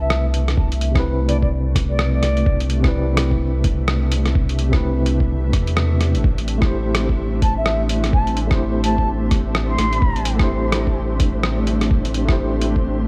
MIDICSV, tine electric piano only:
0, 0, Header, 1, 2, 480
1, 0, Start_track
1, 0, Key_signature, 0, "minor"
1, 0, Tempo, 472441
1, 581, Time_signature, 4, 2, 24, 8
1, 13285, End_track
2, 0, Start_track
2, 0, Title_t, "Tine electric piano"
2, 0, Program_c, 0, 4
2, 0, Note_on_c, 0, 48, 84
2, 0, Note_on_c, 0, 60, 78
2, 0, Note_on_c, 0, 64, 77
2, 0, Note_on_c, 0, 71, 93
2, 910, Note_off_c, 0, 48, 0
2, 923, Note_off_c, 0, 60, 0
2, 929, Note_on_c, 0, 48, 87
2, 937, Note_off_c, 0, 64, 0
2, 950, Note_off_c, 0, 71, 0
2, 957, Note_on_c, 0, 60, 78
2, 985, Note_on_c, 0, 64, 78
2, 1011, Note_on_c, 0, 71, 93
2, 2833, Note_off_c, 0, 48, 0
2, 2845, Note_on_c, 0, 48, 90
2, 2847, Note_off_c, 0, 60, 0
2, 2861, Note_off_c, 0, 64, 0
2, 2872, Note_on_c, 0, 60, 79
2, 2874, Note_off_c, 0, 71, 0
2, 2899, Note_on_c, 0, 64, 77
2, 2926, Note_on_c, 0, 71, 96
2, 4751, Note_off_c, 0, 48, 0
2, 4764, Note_off_c, 0, 60, 0
2, 4767, Note_on_c, 0, 48, 85
2, 4778, Note_off_c, 0, 64, 0
2, 4791, Note_off_c, 0, 71, 0
2, 4791, Note_on_c, 0, 60, 77
2, 4819, Note_on_c, 0, 64, 78
2, 4849, Note_on_c, 0, 71, 98
2, 6311, Note_off_c, 0, 48, 0
2, 6323, Note_off_c, 0, 60, 0
2, 6336, Note_off_c, 0, 64, 0
2, 6351, Note_off_c, 0, 71, 0
2, 6684, Note_on_c, 0, 57, 83
2, 6712, Note_on_c, 0, 64, 81
2, 6740, Note_on_c, 0, 67, 80
2, 6768, Note_on_c, 0, 72, 95
2, 8590, Note_off_c, 0, 57, 0
2, 8604, Note_off_c, 0, 64, 0
2, 8605, Note_on_c, 0, 57, 88
2, 8618, Note_off_c, 0, 67, 0
2, 8630, Note_on_c, 0, 64, 81
2, 8632, Note_off_c, 0, 72, 0
2, 8659, Note_on_c, 0, 67, 81
2, 8685, Note_on_c, 0, 72, 94
2, 10511, Note_off_c, 0, 57, 0
2, 10523, Note_off_c, 0, 64, 0
2, 10525, Note_on_c, 0, 57, 86
2, 10538, Note_off_c, 0, 67, 0
2, 10551, Note_off_c, 0, 72, 0
2, 10551, Note_on_c, 0, 64, 81
2, 10576, Note_on_c, 0, 67, 78
2, 10604, Note_on_c, 0, 72, 96
2, 12431, Note_off_c, 0, 57, 0
2, 12442, Note_on_c, 0, 57, 89
2, 12444, Note_off_c, 0, 64, 0
2, 12456, Note_off_c, 0, 67, 0
2, 12469, Note_on_c, 0, 64, 81
2, 12470, Note_off_c, 0, 72, 0
2, 12496, Note_on_c, 0, 67, 83
2, 12524, Note_on_c, 0, 72, 99
2, 13285, Note_off_c, 0, 57, 0
2, 13285, Note_off_c, 0, 64, 0
2, 13285, Note_off_c, 0, 67, 0
2, 13285, Note_off_c, 0, 72, 0
2, 13285, End_track
0, 0, End_of_file